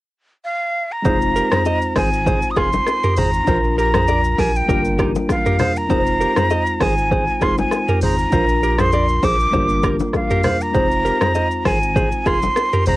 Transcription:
0.45 flute F5
0.92 flute A#5
1.02 sub bass F1, tine electric piano G#3 C4 D#4 F4, clean electric guitar G#4 C5, kick, low conga, shaker
1.07 tine electric piano C5
1.22 shaker
1.36 clean electric guitar G4 A#4, shaker
1.51 clean electric guitar G#4 C5, cross-stick, mid tom, low bongo, shaker
1.65 clean electric guitar C5 D#5, high bongo, shaker
1.81 shaker
1.96 sub bass G#1, clean electric guitar G#4 C5, flute G#5, kick, cross-stick, open hi-hat, low bongo
2.13 shaker
2.26 clean electric guitar G#4 C5, kick, low conga, shaker
2.42 shaker
2.51 flute D#6
2.56 sub bass F1, clean electric guitar F4 G#4, flute C6, kick, cross-stick, high bongo, shaker
2.73 low bongo, shaker
2.86 cross-stick, high bongo, shaker
3.03 clean electric guitar G4 A#4, mid tom, shaker
3.16 sub bass G#1, clean electric guitar G#4 C5, flute A#5, open hi-hat, low conga, shaker
3.34 shaker
3.45 sub bass A#1, tine electric piano D4 F4, clean electric guitar C5, kick, low conga, shaker
3.49 clean electric guitar F4, tine electric piano A#4
3.64 shaker
3.78 clean electric guitar G4 A#4, flute A#5, shaker
3.94 clean electric guitar G#4 C5, cross-stick, mid tom, low bongo, shaker
4.08 clean electric guitar A#4 D5, high bongo, shaker
4.24 shaker
4.38 sub bass A#1, clean electric guitar G4 A#4, flute G#5, kick, open hi-hat, low bongo
4.56 flute G5, shaker
4.66 sub bass G1, tine electric piano G3 A#3 D4 F4, clean electric guitar G4 A#4, kick, low conga, shaker
4.71 tine electric piano A#4
4.85 shaker
4.99 clean electric guitar D#4 G4, kick, cross-stick, high bongo, shaker
5.15 low bongo, shaker
5.29 flute F5, kick, cross-stick, high bongo, shaker
5.46 clean electric guitar G4 A#4, mid tom, shaker
5.59 clean electric guitar G#4 C5, cross-stick, open hi-hat, low conga, shaker
5.76 flute A#5, shaker
5.87 sub bass F1, tine electric piano G#3 C4 D#4 F4, clean electric guitar G#4 C5, kick, low conga, shaker
5.92 tine electric piano A#4
5.99 tine electric piano C5
6.07 shaker
6.21 clean electric guitar G4 A#4, shaker
6.36 clean electric guitar G#4 C5, cross-stick, mid tom, low bongo, shaker
6.50 clean electric guitar C5 D#5, high bongo, shaker
6.66 shaker
6.80 sub bass G#1, clean electric guitar G#4 C5, flute G#5, kick, cross-stick, open hi-hat, low bongo
6.98 shaker
7.11 clean electric guitar G#4 C5, kick, low conga, shaker
7.27 shaker
7.40 sub bass F1, tine electric piano G#3 C4 D#4 F4 C5, clean electric guitar F4 G#4, flute C6, kick, cross-stick, high bongo, shaker
7.58 flute G#5, low bongo, shaker
7.71 cross-stick, high bongo, shaker
7.88 clean electric guitar G4 A#4, mid tom, shaker
8.01 sub bass G#1, clean electric guitar G#4 C5, flute A#5, open hi-hat, low conga, shaker
8.18 shaker
8.30 sub bass A#1, tine electric piano D4 F4, clean electric guitar F4 C5, kick, low conga, shaker
8.35 tine electric piano A#4
8.49 shaker
8.63 clean electric guitar G4 A#4, shaker
8.78 clean electric guitar G#4 C5, flute C6, cross-stick, mid tom, low bongo, shaker
8.92 clean electric guitar A#4 D5, high bongo, shaker
9.09 shaker
9.23 sub bass A#1, clean electric guitar G#4 C5, flute D6, kick, open hi-hat, low bongo, shaker
9.40 shaker
9.51 sub bass G1, tine electric piano G3 A#3 D4 F4, clean electric guitar G4 C5, kick, low conga, shaker
9.56 tine electric piano A#4
9.69 shaker
9.83 clean electric guitar G4 A#4, kick, cross-stick, high bongo, shaker
10.00 low bongo, shaker
10.14 flute F5, kick, cross-stick, high bongo, shaker
10.31 clean electric guitar G4 A#4, mid tom, shaker
10.44 clean electric guitar G#4 C5, cross-stick, open hi-hat, low conga, shaker
10.61 flute A#5, shaker
10.72 sub bass F1, tine electric piano G#3 C4 D#4 F4, clean electric guitar G#4 C5, kick, low conga, shaker
10.77 tine electric piano C5
10.91 shaker
11.05 clean electric guitar G4 A#4, shaker
11.21 clean electric guitar G#4 C5, cross-stick, mid tom, low bongo, shaker
11.35 clean electric guitar C5 D#5, high bongo, shaker
11.51 shaker
11.65 sub bass G#1, clean electric guitar G#4 C5, flute G#5, kick, cross-stick, open hi-hat, low bongo
11.83 shaker
11.96 clean electric guitar G#4 C5, kick, low conga, shaker
12.12 shaker
12.26 sub bass F1, clean electric guitar F4 G#4, flute C6, kick, cross-stick, high bongo, shaker
12.42 low bongo, shaker
12.56 cross-stick, high bongo, shaker
12.73 clean electric guitar G4 A#4, mid tom, shaker
12.86 sub bass G#1, clean electric guitar G#4 C5, flute A#5, open hi-hat, low conga, shaker

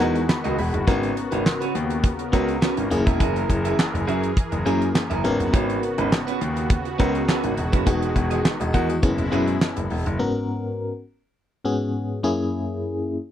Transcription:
Already playing: analog synth pad D#3 G#3 F#4
0.00 grand piano E2, fm electric piano B3 D#4 F#4 A#4 G#5, clean electric guitar F#4 G#4 D#5, closed hi-hat
0.15 muted clean electric guitar stroke, closed hi-hat
0.29 fm electric piano B5, muted clean electric guitar stroke, snare, clap
0.44 grand piano C#2, clean electric guitar F#4 G#4 D#5, closed hi-hat
0.58 grand piano E1, fm electric piano B5, muted clean electric guitar stroke, open hi-hat
0.73 grand piano F#1, muted clean electric guitar stroke, closed hi-hat
0.87 grand piano G#1, analog synth pad C#3 B3 A#4, fm electric piano B3 C#4 F#4 A#4, clean electric guitar C#4 F#4 B4, kick, closed hi-hat
1.03 closed hi-hat
1.16 muted clean electric guitar stroke, closed hi-hat
1.31 grand piano G#1, clean electric guitar C#4 F#4 B4, closed hi-hat
1.45 muted clean electric guitar stroke, snare, clap
1.61 clean electric guitar C#4 F#4 B4, closed hi-hat
1.74 grand piano D#2, muted clean electric guitar stroke, closed hi-hat
1.90 muted clean electric guitar stroke, closed hi-hat
2.04 muted clean electric guitar stroke, kick, closed hi-hat
2.19 muted clean electric guitar stroke, closed hi-hat
2.32 grand piano C#2, fm electric piano B3 C#4 F#4 A#4, clean electric guitar C#4 F#4 B4, kick, closed hi-hat
2.48 muted clean electric guitar stroke, closed hi-hat
2.62 clean electric guitar C#4 F#4 B4, snare, clap
2.77 grand piano G#1, muted clean electric guitar stroke, closed hi-hat
2.90 grand piano F#1, analog synth pad E3 G#4, fm electric piano A#3 C#4 E4 G#4, muted clean electric guitar stroke, closed hi-hat
3.06 grand piano E1, clean electric guitar G#4 A#4 E5, kick, closed hi-hat
3.20 grand piano F#1, clean electric guitar G#4 A#4 E5, kick, closed hi-hat
3.36 closed hi-hat
3.49 grand piano F#1, muted clean electric guitar stroke, kick, closed hi-hat
3.65 clean electric guitar G#4 A#4 E5, closed hi-hat
3.79 snare, clap
3.94 grand piano F#1, muted clean electric guitar stroke, closed hi-hat
4.07 grand piano F#2, clean electric guitar G#4 A#4 E5, closed hi-hat
4.23 muted clean electric guitar stroke, closed hi-hat
4.37 muted clean electric guitar stroke, kick, closed hi-hat
4.52 grand piano F#1, muted clean electric guitar stroke, closed hi-hat
4.66 grand piano F#2, fm electric piano A#3 C#4 E4 G#4, clean electric guitar G#4 A#4 E5, closed hi-hat
4.81 muted clean electric guitar stroke, closed hi-hat
4.95 muted clean electric guitar stroke, snare, clap
5.10 grand piano F#1, clean electric guitar G#4 A#4 E5, closed hi-hat
5.24 grand piano G#1, analog synth pad C#3 B3 F#4, fm electric piano B3 C#4 F#4 A#4, muted clean electric guitar stroke, closed hi-hat
5.40 grand piano F#1, muted clean electric guitar stroke, closed hi-hat
5.53 grand piano G#1, clean electric guitar C#4 F#4 B4, kick, closed hi-hat
5.69 closed hi-hat
5.82 muted clean electric guitar stroke, closed hi-hat
5.98 grand piano G#1, clean electric guitar C#4 F#4 B4, closed hi-hat
6.12 muted clean electric guitar stroke, snare, clap
6.27 clean electric guitar C#4 F#4 B4, closed hi-hat
6.41 grand piano D#2, muted clean electric guitar stroke, closed hi-hat
6.56 muted clean electric guitar stroke, closed hi-hat
6.70 muted clean electric guitar stroke, kick, closed hi-hat
6.85 muted clean electric guitar stroke, closed hi-hat
6.99 grand piano C#2, fm electric piano B3 C#4 F#4 A#4, clean electric guitar C#4 F#4 B4, kick, closed hi-hat
7.14 muted clean electric guitar stroke, closed hi-hat
7.28 clean electric guitar C#4 F#4 B4, snare, clap
7.44 grand piano G#1, muted clean electric guitar stroke, closed hi-hat
7.57 grand piano E1, muted clean electric guitar stroke, closed hi-hat
7.72 grand piano F#1, clean electric guitar C#4 F#4 B4, kick, closed hi-hat
7.86 grand piano E1, analog synth pad D#3 G#3, fm electric piano B3 D#4 F#4 G#4, clean electric guitar F#4 G#4 D#5, kick, closed hi-hat
8.02 closed hi-hat
8.15 grand piano E1, muted clean electric guitar stroke, kick, closed hi-hat
8.31 clean electric guitar F#4 G#4 D#5, closed hi-hat
8.45 snare, clap
8.60 grand piano E1, fm electric piano F#4 D#5, muted clean electric guitar stroke, closed hi-hat
8.73 grand piano E2, clean electric guitar F#4 G#4 D#5, fm electric piano A#4 F#5, kick, closed hi-hat
8.89 fm electric piano F#4 D#5, muted clean electric guitar stroke, closed hi-hat
9.02 grand piano F#1, analog synth pad B2 G#3 E4, fm electric piano B3 C#4 E4 G#4, muted clean electric guitar stroke, kick, closed hi-hat
9.18 grand piano F#1, muted clean electric guitar stroke, closed hi-hat
9.31 grand piano F#2, fm electric piano B3 C#4 E4 G#4, clean electric guitar G#4 B4 E5, closed hi-hat
9.48 muted clean electric guitar stroke, closed hi-hat
9.61 muted clean electric guitar stroke, snare, clap
9.77 grand piano F#1, muted clean electric guitar stroke, closed hi-hat
9.90 grand piano E1, open hi-hat
10.06 grand piano F#1, muted clean electric guitar stroke, closed hi-hat
10.19 fm electric piano G#2 B3 C#4 F#4 A#4
11.64 fm electric piano G#2 B3 C#4 F#4 G#4
12.23 fm electric piano F#2 A#3 C#4 E4 G#4

